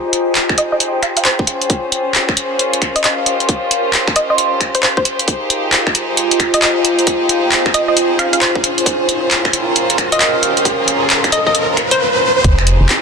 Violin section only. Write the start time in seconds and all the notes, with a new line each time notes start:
Already playing: D#4 G4 G#4 C5
1.47 C#4 F4
3.26 G4
5.28 D#4 G#4 C5
8.63 C#4 F4
10.43 A#4
12.44 D#4 G4 G#4 C5